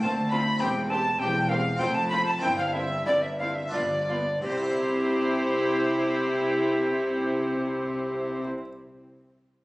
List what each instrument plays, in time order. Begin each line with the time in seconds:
0.00 harpsichord D2 A3 F4 C5, double bass section D2, cello section D2, viola section C4, violin section F4 A5, recorder A5
0.31 viola section C4, violin section F4 B5, recorder B5
0.57 double bass section E1, harpsichord C4 G4 C5, viola section C4, recorder G5, violin section G5
0.61 harpsichord E2, cello section E2, violin section G4
0.89 viola section C4, violin section G4 A5, recorder A5
1.19 double bass section E1, harpsichord E2, cello section E2, viola section C4, violin section G4 G5, recorder G5
1.49 viola section C4, violin section G4 F5, recorder F5
1.76 harpsichord C4 F4 C5, recorder G5, violin section G5
1.81 double bass section F1, cello section F2, harpsichord F2, viola section C4, violin section F4
1.94 recorder A5, violin section A5
2.09 viola section C4, violin section F4 B5, recorder B5
2.26 recorder A5, violin section A5
2.38 harpsichord C4 E4 C5, recorder G5, violin section G5
2.43 double bass section G1, cello section G2, harpsichord G2, viola section C4, violin section E4
2.58 recorder F5, violin section F5
2.73 viola section C4, violin section E4 E5, recorder E5
3.06 double bass section G1, harpsichord G2, cello section G2, viola section C4, violin section E4 D5, recorder D5
3.22 violin section E5, recorder E5
3.38 viola section C4, violin section E4 F5, recorder F5
3.55 recorder E5, violin section E5
3.68 harpsichord D4 F4 B4
3.72 double bass section G1, harpsichord G2, cello section G2, viola section B3, violin section F4 D5, recorder D5
4.08 viola section B3, violin section F4
4.42 double bass section C2, harpsichord C3, cello section C3, viola section C4, violin section E4 C5, recorder G4
4.49 harpsichord C4
4.56 harpsichord E4
4.63 harpsichord G4
4.70 harpsichord E5